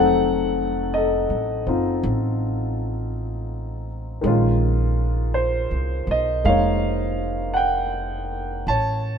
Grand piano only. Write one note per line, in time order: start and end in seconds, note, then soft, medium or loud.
0.00 4.22 F#3 medium
0.00 4.24 A3 soft
0.00 1.65 C4 soft
0.00 1.66 D#4 medium
0.00 0.95 A4 medium
0.00 0.90 F#5 medium
0.94 3.86 A4 soft
0.94 3.85 D#5 medium
1.67 4.24 C4 soft
1.67 4.25 D#4 soft
1.67 4.26 F4 soft
4.21 8.66 D#3 medium
4.21 6.43 G#3 soft
4.25 8.68 C#4 soft
4.25 8.69 F4 medium
5.34 6.11 C5 medium
6.11 6.47 D#5 medium
6.44 8.67 G#3 soft
6.44 8.67 A#3 soft
6.44 8.68 D#4 soft
6.44 7.55 F5 medium
6.48 8.65 C#5 medium
7.54 7.57 F#5 medium
7.54 8.71 G5 medium
8.68 9.18 C#5 medium
8.68 9.18 A5 medium